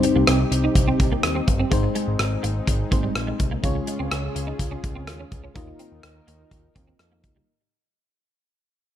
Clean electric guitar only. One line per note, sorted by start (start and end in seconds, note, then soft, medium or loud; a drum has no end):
0.04 0.14 G3 medium
0.16 0.26 A#3 medium
0.28 0.37 C4 medium
0.52 muted clean electric guitar stroke soft
0.64 0.74 D#4 medium
0.88 0.98 C4 medium
1.00 muted clean electric guitar stroke soft
1.12 1.22 A#3 medium
1.35 1.45 C4 medium
1.47 muted clean electric guitar stroke soft
1.60 1.69 C4 medium
1.71 1.81 G#3 medium
1.83 muted clean electric guitar stroke soft
1.95 2.05 G#3 medium
2.43 2.53 A#3 medium
2.67 muted clean electric guitar stroke soft
2.91 3.01 A#3 medium
3.03 3.13 G3 medium
3.27 3.37 G#3 medium
3.39 muted clean electric guitar stroke soft
3.51 3.61 A#3 medium
3.75 muted clean electric guitar stroke soft
3.87 3.97 G#3 medium
3.99 4.09 C4 medium
4.11 4.21 C#4 medium
4.35 muted clean electric guitar stroke soft
4.47 4.57 D#4 medium
4.71 4.81 C#4 medium
4.83 muted clean electric guitar stroke soft
4.96 5.05 C4 medium
5.19 5.29 C#4 medium
5.32 muted clean electric guitar stroke soft
5.44 5.54 C#4 medium
5.55 5.65 D#4 medium
5.67 muted clean electric guitar stroke soft
5.79 5.89 C4 medium
6.27 6.37 A#3 medium
6.52 muted clean electric guitar stroke soft
6.75 6.85 C4 medium
6.87 6.97 C4 medium
7.12 7.22 A#3 medium
7.24 muted clean electric guitar stroke soft
7.36 7.46 G3 medium